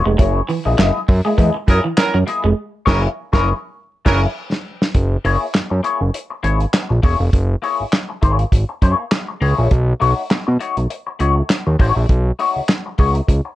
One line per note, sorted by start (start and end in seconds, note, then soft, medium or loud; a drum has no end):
0.05 0.16 F1 loud
0.05 0.13 G#3 medium
0.05 muted clean electric guitar stroke soft
0.18 0.42 F#1 loud
0.18 0.28 F#3 medium
0.18 0.39 A#3 loud
0.18 0.39 E4 medium
0.18 0.39 G#4 loud
0.18 0.40 C#5 loud
0.18 kick loud
0.18 closed hi-hat loud
0.48 0.58 E3 medium
0.48 muted clean electric guitar stroke soft
0.48 open hi-hat medium
0.65 0.76 A#1 medium
0.65 0.77 A#3 medium
0.65 0.78 E4 medium
0.65 0.79 G#4 medium
0.65 0.78 D#5 medium
0.65 muted clean electric guitar stroke soft
0.78 0.91 F#1 medium
0.78 0.88 F#3 medium
0.78 0.98 A#3 medium
0.78 0.99 E4 loud
0.78 0.99 G#4 medium
0.78 0.99 D#5 medium
0.78 snare loud
0.78 clap medium
0.78 closed hi-hat medium
1.08 1.21 F#2 loud
1.08 muted clean electric guitar stroke soft
1.08 kick loud
1.08 open hi-hat medium
1.25 1.32 G#3 medium
1.25 1.36 A#3 medium
1.25 1.37 E4 medium
1.25 1.37 G#4 medium
1.25 1.38 D#5 medium
1.37 1.51 E2 loud
1.37 1.48 G#3 medium
1.37 1.58 A#3 medium
1.37 1.55 E4 medium
1.37 1.55 G#4 medium
1.37 1.55 D#5 medium
1.37 kick loud
1.37 closed hi-hat loud
1.55 muted clean electric guitar stroke soft
1.68 1.80 F#2 loud
1.68 1.78 E3 medium
1.68 1.84 A#3 medium
1.68 1.79 C#4 medium
1.68 1.84 E4 medium
1.68 1.84 G#4 medium
1.68 1.78 A#4 loud
1.68 1.84 D#5 medium
1.68 kick medium
1.68 closed hi-hat medium
1.84 1.92 E3 medium
1.84 muted clean electric guitar stroke medium
1.97 2.16 E3 medium
1.97 2.16 C#4 medium
1.97 2.16 A#4 loud
1.97 muted clean electric guitar stroke soft
1.97 snare loud
1.97 clap loud
1.97 closed hi-hat loud
2.14 2.24 F#2 loud
2.14 2.22 F#3 medium
2.27 2.43 A#3 medium
2.27 2.44 E4 medium
2.27 2.43 G#4 medium
2.27 2.43 D#5 medium
2.27 muted clean electric guitar stroke soft
2.27 closed hi-hat medium
2.44 2.54 F1 medium
2.44 2.51 G#3 medium
2.44 muted clean electric guitar stroke soft
2.86 3.08 F#1 loud
2.86 3.02 E3 medium
2.86 3.08 A#3 loud
2.86 3.02 C#4 loud
2.86 3.08 E4 loud
2.86 3.07 G#4 loud
2.86 3.02 A#4 medium
2.86 3.07 C#5 loud
2.86 kick loud
2.86 snare loud
2.86 crash medium
3.33 3.53 F#1 medium
3.33 3.48 E3 medium
3.33 3.54 A#3 loud
3.33 3.48 C#4 loud
3.33 3.53 E4 loud
3.33 3.53 G#4 loud
3.33 3.48 A#4 medium
3.33 3.53 C#5 loud
3.33 kick loud
3.33 snare loud
4.05 4.27 F#1 loud
4.05 4.21 E3 loud
4.05 4.26 A#3 loud
4.05 4.21 C#4 loud
4.05 4.26 E4 loud
4.05 4.27 G#4 loud
4.05 4.21 A#4 loud
4.05 4.27 C#5 medium
4.05 kick loud
4.05 snare loud
4.05 crash medium
4.52 snare medium
4.82 snare loud
4.95 5.17 F#1 loud
4.95 kick loud
4.95 closed hi-hat medium
5.25 5.37 F#1 loud
5.25 5.44 A#3 medium
5.25 5.45 E4 loud
5.25 5.45 G#4 loud
5.25 5.45 C#5 loud
5.25 open hi-hat medium
5.54 5.62 F#2 soft
5.54 snare loud
5.54 clap medium
5.54 closed hi-hat medium
5.70 5.81 F#2 medium
5.70 muted clean electric guitar stroke soft
5.83 6.04 A#3 medium
5.83 6.01 E4 medium
5.83 6.01 G#4 medium
5.83 6.00 C#5 medium
5.83 closed hi-hat medium
6.01 6.11 F#1 medium
6.01 muted clean electric guitar stroke soft
6.14 muted clean electric guitar stroke soft
6.14 closed hi-hat loud
6.30 muted clean electric guitar stroke soft
6.43 6.66 G#1 medium
6.43 6.63 A#3 medium
6.43 6.60 E4 medium
6.43 6.59 G#4 medium
6.43 6.59 C#5 medium
6.43 closed hi-hat medium
6.60 muted clean electric guitar stroke soft
6.60 closed hi-hat soft
6.73 muted clean electric guitar stroke soft
6.73 snare loud
6.73 clap loud
6.73 closed hi-hat medium
6.89 7.00 A#1 loud
6.89 muted clean electric guitar stroke soft
7.03 7.16 E1 medium
7.03 7.23 A#3 loud
7.03 7.20 E4 loud
7.03 7.19 G#4 medium
7.03 7.18 C#5 loud
7.03 kick loud
7.03 open hi-hat medium
7.20 7.30 F1 medium
7.20 muted clean electric guitar stroke soft
7.33 7.56 F#1 loud
7.33 kick medium
7.33 closed hi-hat loud
7.62 7.82 A#3 medium
7.62 7.83 E4 medium
7.62 7.83 G#4 medium
7.62 7.83 C#5 medium
7.62 open hi-hat medium
7.80 7.85 G#1 soft
7.92 snare loud
7.92 clap medium
7.92 closed hi-hat medium
8.09 muted clean electric guitar stroke soft
8.22 8.45 G#1 loud
8.22 8.43 A#3 medium
8.22 8.39 E4 medium
8.22 8.38 G#4 medium
8.22 8.38 C#5 medium
8.22 kick medium
8.22 closed hi-hat medium
8.39 muted clean electric guitar stroke medium
8.39 closed hi-hat medium
8.52 8.65 G#1 loud
8.52 muted clean electric guitar stroke soft
8.52 kick loud
8.52 closed hi-hat loud
8.69 muted clean electric guitar stroke soft
8.82 8.95 F#2 medium
8.82 9.03 A#3 medium
8.82 8.99 E4 medium
8.82 8.98 G#4 medium
8.82 8.97 C#5 medium
8.82 kick medium
8.82 closed hi-hat medium
8.98 muted clean electric guitar stroke soft
9.11 muted clean electric guitar stroke soft
9.11 snare loud
9.11 clap loud
9.11 closed hi-hat medium
9.28 muted clean electric guitar stroke soft
9.41 9.54 C#2 medium
9.41 9.57 A#3 medium
9.41 9.57 E4 medium
9.41 9.57 G#4 medium
9.41 9.56 C#5 medium
9.41 open hi-hat medium
9.57 9.68 A#1 medium
9.57 9.71 A#3 medium
9.57 9.71 E4 medium
9.57 9.71 G#4 medium
9.57 9.71 C#5 medium
9.71 9.94 B1 loud
9.71 kick loud
9.71 closed hi-hat medium
10.00 10.14 B1 medium
10.00 10.20 A3 medium
10.00 10.21 D#4 medium
10.00 10.21 F#4 medium
10.00 10.21 C#5 loud
10.00 open hi-hat medium
10.30 10.38 B2 soft
10.30 snare loud
10.30 clap medium
10.30 closed hi-hat medium
10.47 10.58 B2 loud
10.47 muted clean electric guitar stroke medium
10.60 10.80 A3 medium
10.60 10.77 D#4 medium
10.60 10.77 F#4 medium
10.60 10.76 C#5 medium
10.60 closed hi-hat medium
10.77 10.87 B1 medium
10.77 muted clean electric guitar stroke soft
10.77 closed hi-hat medium
10.90 muted clean electric guitar stroke soft
10.90 closed hi-hat medium
11.07 muted clean electric guitar stroke soft
11.19 11.43 C#2 medium
11.19 11.40 A3 medium
11.19 11.37 D#4 medium
11.19 11.36 F#4 medium
11.19 11.36 C#5 loud
11.19 closed hi-hat medium
11.37 muted clean electric guitar stroke soft
11.50 muted clean electric guitar stroke soft
11.50 snare loud
11.50 clap loud
11.50 closed hi-hat loud
11.67 11.77 D#2 medium
11.67 muted clean electric guitar stroke medium
11.80 11.92 A1 loud
11.80 12.01 A3 medium
11.80 11.96 D#4 medium
11.80 11.96 F#4 loud
11.80 11.95 C#5 loud
11.80 kick loud
11.80 open hi-hat medium
11.96 12.06 A#1 medium
11.96 muted clean electric guitar stroke soft
12.09 12.32 B1 loud
12.09 kick medium
12.09 closed hi-hat medium
12.39 12.59 A3 medium
12.39 12.59 D#4 medium
12.39 12.60 F#4 medium
12.39 12.60 C#5 loud
12.39 open hi-hat medium
12.56 12.62 C#2 soft
12.68 snare loud
12.68 clap medium
12.68 closed hi-hat medium
12.86 muted clean electric guitar stroke soft
12.98 13.21 C#2 medium
12.98 13.18 A3 medium
12.98 13.15 D#4 medium
12.98 13.15 F#4 medium
12.98 13.14 C#5 medium
12.98 kick medium
12.98 open hi-hat medium
13.15 muted clean electric guitar stroke soft
13.15 closed hi-hat medium
13.27 13.41 C#2 loud
13.27 muted clean electric guitar stroke soft
13.27 kick medium
13.27 closed hi-hat medium
13.45 muted clean electric guitar stroke soft